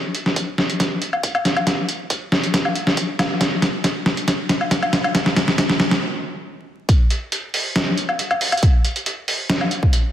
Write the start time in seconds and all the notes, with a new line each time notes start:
0.15 closed hi-hat
0.26 snare
0.36 kick, closed hi-hat
0.58 snare
0.70 closed hi-hat
0.80 kick, snare, closed hi-hat
1.02 closed hi-hat
1.13 low woodblock
1.23 kick, closed hi-hat
1.35 low woodblock
1.45 snare, closed hi-hat
1.56 low woodblock
1.67 kick, snare, closed hi-hat
1.89 closed hi-hat
2.10 kick, closed hi-hat
2.32 snare
2.44 closed hi-hat
2.54 kick, snare, closed hi-hat
2.65 low woodblock
2.75 closed hi-hat
2.87 snare
2.97 kick, closed hi-hat
3.19 snare, closed hi-hat, low woodblock
3.41 kick, snare, closed hi-hat
3.62 snare, closed hi-hat
3.84 kick, snare, closed hi-hat
4.06 snare
4.17 closed hi-hat
4.28 kick, snare, closed hi-hat
4.49 snare, closed hi-hat
4.61 low woodblock
4.71 kick, snare, closed hi-hat
4.82 low woodblock
4.93 snare, closed hi-hat
5.04 low woodblock
5.15 kick, snare, closed hi-hat
5.26 snare
5.37 snare, closed hi-hat
5.48 snare
5.58 kick, snare, closed hi-hat
5.70 snare
5.80 snare
5.91 snare, closed hi-hat
6.89 kick, closed hi-hat
7.10 closed hi-hat
7.32 closed hi-hat
7.54 open hi-hat
7.76 snare, closed hi-hat
7.97 closed hi-hat
8.09 low woodblock
8.19 closed hi-hat
8.31 low woodblock
8.41 open hi-hat
8.52 closed hi-hat, low woodblock
8.57 closed hi-hat
8.63 kick, closed hi-hat
8.85 closed hi-hat
8.96 closed hi-hat
9.06 closed hi-hat
9.28 open hi-hat
9.50 snare, closed hi-hat
9.61 low woodblock
9.71 closed hi-hat
9.83 kick
9.93 closed hi-hat